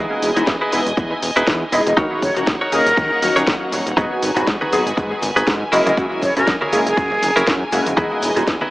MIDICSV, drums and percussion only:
0, 0, Header, 1, 2, 480
1, 0, Start_track
1, 0, Key_signature, 5, "minor"
1, 0, Tempo, 500000
1, 1894, Time_signature, 4, 2, 24, 8
1, 8355, End_track
2, 0, Start_track
2, 0, Title_t, "Drums"
2, 215, Note_on_c, 9, 46, 114
2, 221, Note_on_c, 9, 82, 76
2, 311, Note_off_c, 9, 46, 0
2, 317, Note_off_c, 9, 82, 0
2, 350, Note_on_c, 9, 42, 63
2, 356, Note_on_c, 9, 82, 42
2, 446, Note_off_c, 9, 42, 0
2, 452, Note_off_c, 9, 82, 0
2, 453, Note_on_c, 9, 38, 122
2, 454, Note_on_c, 9, 42, 51
2, 455, Note_on_c, 9, 36, 127
2, 460, Note_on_c, 9, 82, 32
2, 549, Note_off_c, 9, 38, 0
2, 550, Note_off_c, 9, 42, 0
2, 551, Note_off_c, 9, 36, 0
2, 556, Note_off_c, 9, 82, 0
2, 695, Note_on_c, 9, 46, 101
2, 700, Note_on_c, 9, 82, 77
2, 791, Note_off_c, 9, 46, 0
2, 796, Note_off_c, 9, 82, 0
2, 830, Note_on_c, 9, 42, 68
2, 836, Note_on_c, 9, 82, 45
2, 926, Note_off_c, 9, 42, 0
2, 932, Note_off_c, 9, 82, 0
2, 935, Note_on_c, 9, 36, 127
2, 936, Note_on_c, 9, 42, 52
2, 941, Note_on_c, 9, 82, 32
2, 1031, Note_off_c, 9, 36, 0
2, 1032, Note_off_c, 9, 42, 0
2, 1037, Note_off_c, 9, 82, 0
2, 1176, Note_on_c, 9, 46, 115
2, 1181, Note_on_c, 9, 82, 80
2, 1272, Note_off_c, 9, 46, 0
2, 1277, Note_off_c, 9, 82, 0
2, 1312, Note_on_c, 9, 42, 67
2, 1317, Note_on_c, 9, 82, 43
2, 1408, Note_off_c, 9, 42, 0
2, 1413, Note_off_c, 9, 82, 0
2, 1415, Note_on_c, 9, 36, 124
2, 1415, Note_on_c, 9, 38, 127
2, 1416, Note_on_c, 9, 42, 53
2, 1422, Note_on_c, 9, 82, 34
2, 1511, Note_off_c, 9, 36, 0
2, 1511, Note_off_c, 9, 38, 0
2, 1512, Note_off_c, 9, 42, 0
2, 1518, Note_off_c, 9, 82, 0
2, 1656, Note_on_c, 9, 46, 100
2, 1661, Note_on_c, 9, 82, 77
2, 1752, Note_off_c, 9, 46, 0
2, 1757, Note_off_c, 9, 82, 0
2, 1791, Note_on_c, 9, 42, 66
2, 1797, Note_on_c, 9, 82, 45
2, 1887, Note_off_c, 9, 42, 0
2, 1893, Note_off_c, 9, 82, 0
2, 1895, Note_on_c, 9, 36, 126
2, 1896, Note_on_c, 9, 42, 49
2, 1901, Note_on_c, 9, 82, 33
2, 1991, Note_off_c, 9, 36, 0
2, 1992, Note_off_c, 9, 42, 0
2, 1997, Note_off_c, 9, 82, 0
2, 2135, Note_on_c, 9, 36, 64
2, 2135, Note_on_c, 9, 46, 110
2, 2141, Note_on_c, 9, 82, 77
2, 2231, Note_off_c, 9, 36, 0
2, 2231, Note_off_c, 9, 46, 0
2, 2237, Note_off_c, 9, 82, 0
2, 2270, Note_on_c, 9, 42, 62
2, 2276, Note_on_c, 9, 82, 44
2, 2366, Note_off_c, 9, 42, 0
2, 2372, Note_off_c, 9, 82, 0
2, 2373, Note_on_c, 9, 38, 119
2, 2374, Note_on_c, 9, 42, 51
2, 2375, Note_on_c, 9, 36, 127
2, 2380, Note_on_c, 9, 82, 33
2, 2469, Note_off_c, 9, 38, 0
2, 2470, Note_off_c, 9, 42, 0
2, 2471, Note_off_c, 9, 36, 0
2, 2476, Note_off_c, 9, 82, 0
2, 2614, Note_on_c, 9, 46, 99
2, 2620, Note_on_c, 9, 82, 76
2, 2710, Note_off_c, 9, 46, 0
2, 2716, Note_off_c, 9, 82, 0
2, 2751, Note_on_c, 9, 42, 65
2, 2756, Note_on_c, 9, 82, 45
2, 2847, Note_off_c, 9, 42, 0
2, 2852, Note_off_c, 9, 82, 0
2, 2855, Note_on_c, 9, 36, 122
2, 2855, Note_on_c, 9, 42, 50
2, 2861, Note_on_c, 9, 82, 34
2, 2951, Note_off_c, 9, 36, 0
2, 2951, Note_off_c, 9, 42, 0
2, 2957, Note_off_c, 9, 82, 0
2, 3095, Note_on_c, 9, 46, 115
2, 3100, Note_on_c, 9, 82, 77
2, 3191, Note_off_c, 9, 46, 0
2, 3196, Note_off_c, 9, 82, 0
2, 3231, Note_on_c, 9, 42, 61
2, 3237, Note_on_c, 9, 82, 45
2, 3327, Note_off_c, 9, 42, 0
2, 3333, Note_off_c, 9, 82, 0
2, 3334, Note_on_c, 9, 38, 121
2, 3335, Note_on_c, 9, 36, 120
2, 3336, Note_on_c, 9, 42, 51
2, 3341, Note_on_c, 9, 82, 34
2, 3430, Note_off_c, 9, 38, 0
2, 3431, Note_off_c, 9, 36, 0
2, 3432, Note_off_c, 9, 42, 0
2, 3437, Note_off_c, 9, 82, 0
2, 3576, Note_on_c, 9, 46, 98
2, 3581, Note_on_c, 9, 82, 76
2, 3672, Note_off_c, 9, 46, 0
2, 3677, Note_off_c, 9, 82, 0
2, 3712, Note_on_c, 9, 42, 66
2, 3718, Note_on_c, 9, 82, 44
2, 3808, Note_off_c, 9, 42, 0
2, 3814, Note_off_c, 9, 82, 0
2, 3815, Note_on_c, 9, 36, 115
2, 3816, Note_on_c, 9, 42, 52
2, 3818, Note_on_c, 9, 82, 40
2, 3822, Note_off_c, 9, 82, 0
2, 3822, Note_on_c, 9, 82, 34
2, 3911, Note_off_c, 9, 36, 0
2, 3912, Note_off_c, 9, 42, 0
2, 3918, Note_off_c, 9, 82, 0
2, 4056, Note_on_c, 9, 46, 110
2, 4057, Note_on_c, 9, 82, 83
2, 4062, Note_off_c, 9, 82, 0
2, 4062, Note_on_c, 9, 82, 83
2, 4152, Note_off_c, 9, 46, 0
2, 4158, Note_off_c, 9, 82, 0
2, 4186, Note_on_c, 9, 82, 55
2, 4190, Note_on_c, 9, 64, 82
2, 4191, Note_on_c, 9, 42, 64
2, 4197, Note_off_c, 9, 82, 0
2, 4197, Note_on_c, 9, 82, 44
2, 4286, Note_off_c, 9, 64, 0
2, 4287, Note_off_c, 9, 42, 0
2, 4293, Note_off_c, 9, 82, 0
2, 4295, Note_on_c, 9, 36, 126
2, 4295, Note_on_c, 9, 38, 117
2, 4296, Note_on_c, 9, 42, 51
2, 4302, Note_on_c, 9, 82, 36
2, 4310, Note_off_c, 9, 82, 0
2, 4310, Note_on_c, 9, 82, 40
2, 4391, Note_off_c, 9, 36, 0
2, 4391, Note_off_c, 9, 38, 0
2, 4392, Note_off_c, 9, 42, 0
2, 4406, Note_off_c, 9, 82, 0
2, 4437, Note_on_c, 9, 63, 93
2, 4533, Note_off_c, 9, 63, 0
2, 4537, Note_on_c, 9, 46, 96
2, 4538, Note_on_c, 9, 82, 86
2, 4542, Note_off_c, 9, 82, 0
2, 4542, Note_on_c, 9, 82, 83
2, 4633, Note_off_c, 9, 46, 0
2, 4638, Note_off_c, 9, 82, 0
2, 4672, Note_on_c, 9, 82, 48
2, 4673, Note_on_c, 9, 42, 65
2, 4678, Note_off_c, 9, 82, 0
2, 4678, Note_on_c, 9, 82, 46
2, 4769, Note_off_c, 9, 42, 0
2, 4774, Note_off_c, 9, 82, 0
2, 4775, Note_on_c, 9, 36, 122
2, 4776, Note_on_c, 9, 42, 51
2, 4779, Note_on_c, 9, 82, 35
2, 4782, Note_off_c, 9, 82, 0
2, 4782, Note_on_c, 9, 82, 36
2, 4871, Note_off_c, 9, 36, 0
2, 4872, Note_off_c, 9, 42, 0
2, 4878, Note_off_c, 9, 82, 0
2, 5010, Note_on_c, 9, 63, 72
2, 5014, Note_on_c, 9, 82, 93
2, 5016, Note_on_c, 9, 46, 112
2, 5022, Note_off_c, 9, 82, 0
2, 5022, Note_on_c, 9, 82, 83
2, 5106, Note_off_c, 9, 63, 0
2, 5112, Note_off_c, 9, 46, 0
2, 5118, Note_off_c, 9, 82, 0
2, 5153, Note_on_c, 9, 42, 66
2, 5156, Note_on_c, 9, 82, 54
2, 5158, Note_off_c, 9, 82, 0
2, 5158, Note_on_c, 9, 82, 45
2, 5249, Note_off_c, 9, 42, 0
2, 5254, Note_off_c, 9, 82, 0
2, 5255, Note_on_c, 9, 36, 119
2, 5256, Note_on_c, 9, 38, 120
2, 5257, Note_on_c, 9, 42, 51
2, 5263, Note_on_c, 9, 82, 35
2, 5351, Note_off_c, 9, 36, 0
2, 5352, Note_off_c, 9, 38, 0
2, 5353, Note_off_c, 9, 42, 0
2, 5359, Note_off_c, 9, 82, 0
2, 5497, Note_on_c, 9, 46, 92
2, 5499, Note_on_c, 9, 82, 87
2, 5502, Note_off_c, 9, 82, 0
2, 5502, Note_on_c, 9, 82, 83
2, 5593, Note_off_c, 9, 46, 0
2, 5598, Note_off_c, 9, 82, 0
2, 5630, Note_on_c, 9, 63, 94
2, 5630, Note_on_c, 9, 82, 55
2, 5632, Note_on_c, 9, 42, 66
2, 5632, Note_on_c, 9, 64, 84
2, 5637, Note_off_c, 9, 82, 0
2, 5637, Note_on_c, 9, 82, 46
2, 5726, Note_off_c, 9, 63, 0
2, 5728, Note_off_c, 9, 42, 0
2, 5728, Note_off_c, 9, 64, 0
2, 5733, Note_off_c, 9, 82, 0
2, 5735, Note_on_c, 9, 36, 114
2, 5736, Note_on_c, 9, 42, 53
2, 5741, Note_on_c, 9, 82, 36
2, 5743, Note_off_c, 9, 82, 0
2, 5743, Note_on_c, 9, 82, 39
2, 5831, Note_off_c, 9, 36, 0
2, 5832, Note_off_c, 9, 42, 0
2, 5839, Note_off_c, 9, 82, 0
2, 5972, Note_on_c, 9, 82, 84
2, 5975, Note_on_c, 9, 36, 59
2, 5976, Note_on_c, 9, 46, 106
2, 5981, Note_off_c, 9, 82, 0
2, 5981, Note_on_c, 9, 82, 83
2, 6071, Note_off_c, 9, 36, 0
2, 6072, Note_off_c, 9, 46, 0
2, 6077, Note_off_c, 9, 82, 0
2, 6111, Note_on_c, 9, 82, 50
2, 6112, Note_on_c, 9, 42, 65
2, 6115, Note_on_c, 9, 64, 81
2, 6118, Note_off_c, 9, 82, 0
2, 6118, Note_on_c, 9, 82, 46
2, 6208, Note_off_c, 9, 42, 0
2, 6211, Note_off_c, 9, 64, 0
2, 6212, Note_off_c, 9, 82, 0
2, 6212, Note_on_c, 9, 82, 43
2, 6215, Note_on_c, 9, 36, 121
2, 6215, Note_on_c, 9, 38, 115
2, 6216, Note_on_c, 9, 42, 54
2, 6222, Note_off_c, 9, 82, 0
2, 6222, Note_on_c, 9, 82, 36
2, 6311, Note_off_c, 9, 36, 0
2, 6311, Note_off_c, 9, 38, 0
2, 6312, Note_off_c, 9, 42, 0
2, 6318, Note_off_c, 9, 82, 0
2, 6354, Note_on_c, 9, 63, 95
2, 6450, Note_off_c, 9, 63, 0
2, 6453, Note_on_c, 9, 82, 94
2, 6457, Note_on_c, 9, 46, 94
2, 6462, Note_off_c, 9, 82, 0
2, 6462, Note_on_c, 9, 82, 85
2, 6553, Note_off_c, 9, 46, 0
2, 6558, Note_off_c, 9, 82, 0
2, 6585, Note_on_c, 9, 82, 53
2, 6592, Note_on_c, 9, 42, 69
2, 6598, Note_off_c, 9, 82, 0
2, 6598, Note_on_c, 9, 82, 50
2, 6688, Note_off_c, 9, 42, 0
2, 6694, Note_off_c, 9, 82, 0
2, 6694, Note_on_c, 9, 82, 42
2, 6695, Note_on_c, 9, 36, 122
2, 6696, Note_on_c, 9, 42, 53
2, 6701, Note_off_c, 9, 82, 0
2, 6701, Note_on_c, 9, 82, 36
2, 6791, Note_off_c, 9, 36, 0
2, 6792, Note_off_c, 9, 42, 0
2, 6797, Note_off_c, 9, 82, 0
2, 6833, Note_on_c, 9, 64, 79
2, 6929, Note_off_c, 9, 64, 0
2, 6936, Note_on_c, 9, 46, 105
2, 6940, Note_on_c, 9, 63, 68
2, 6940, Note_on_c, 9, 82, 85
2, 6942, Note_off_c, 9, 82, 0
2, 6942, Note_on_c, 9, 82, 83
2, 7032, Note_off_c, 9, 46, 0
2, 7036, Note_off_c, 9, 63, 0
2, 7038, Note_off_c, 9, 82, 0
2, 7071, Note_on_c, 9, 82, 58
2, 7072, Note_on_c, 9, 42, 67
2, 7077, Note_off_c, 9, 82, 0
2, 7077, Note_on_c, 9, 82, 48
2, 7168, Note_off_c, 9, 42, 0
2, 7173, Note_off_c, 9, 82, 0
2, 7173, Note_on_c, 9, 82, 40
2, 7174, Note_on_c, 9, 38, 121
2, 7175, Note_on_c, 9, 36, 115
2, 7176, Note_on_c, 9, 42, 53
2, 7181, Note_off_c, 9, 82, 0
2, 7181, Note_on_c, 9, 82, 37
2, 7270, Note_off_c, 9, 38, 0
2, 7271, Note_off_c, 9, 36, 0
2, 7272, Note_off_c, 9, 42, 0
2, 7277, Note_off_c, 9, 82, 0
2, 7414, Note_on_c, 9, 82, 93
2, 7416, Note_on_c, 9, 46, 93
2, 7421, Note_off_c, 9, 82, 0
2, 7421, Note_on_c, 9, 82, 83
2, 7512, Note_off_c, 9, 46, 0
2, 7517, Note_off_c, 9, 82, 0
2, 7544, Note_on_c, 9, 82, 54
2, 7550, Note_on_c, 9, 42, 66
2, 7556, Note_off_c, 9, 82, 0
2, 7556, Note_on_c, 9, 82, 49
2, 7558, Note_on_c, 9, 63, 85
2, 7646, Note_off_c, 9, 42, 0
2, 7652, Note_off_c, 9, 82, 0
2, 7654, Note_off_c, 9, 63, 0
2, 7656, Note_on_c, 9, 36, 115
2, 7656, Note_on_c, 9, 42, 57
2, 7661, Note_on_c, 9, 82, 35
2, 7752, Note_off_c, 9, 36, 0
2, 7752, Note_off_c, 9, 42, 0
2, 7757, Note_off_c, 9, 82, 0
2, 7891, Note_on_c, 9, 82, 90
2, 7896, Note_on_c, 9, 46, 104
2, 7902, Note_off_c, 9, 82, 0
2, 7902, Note_on_c, 9, 82, 88
2, 7992, Note_off_c, 9, 46, 0
2, 7998, Note_off_c, 9, 82, 0
2, 8032, Note_on_c, 9, 42, 69
2, 8034, Note_on_c, 9, 64, 81
2, 8034, Note_on_c, 9, 82, 57
2, 8038, Note_off_c, 9, 82, 0
2, 8038, Note_on_c, 9, 82, 49
2, 8128, Note_off_c, 9, 42, 0
2, 8130, Note_off_c, 9, 64, 0
2, 8134, Note_off_c, 9, 82, 0
2, 8136, Note_on_c, 9, 36, 117
2, 8136, Note_on_c, 9, 38, 117
2, 8137, Note_on_c, 9, 42, 57
2, 8140, Note_on_c, 9, 82, 45
2, 8143, Note_off_c, 9, 82, 0
2, 8143, Note_on_c, 9, 82, 37
2, 8232, Note_off_c, 9, 36, 0
2, 8232, Note_off_c, 9, 38, 0
2, 8233, Note_off_c, 9, 42, 0
2, 8239, Note_off_c, 9, 82, 0
2, 8268, Note_on_c, 9, 63, 97
2, 8355, Note_off_c, 9, 63, 0
2, 8355, End_track
0, 0, End_of_file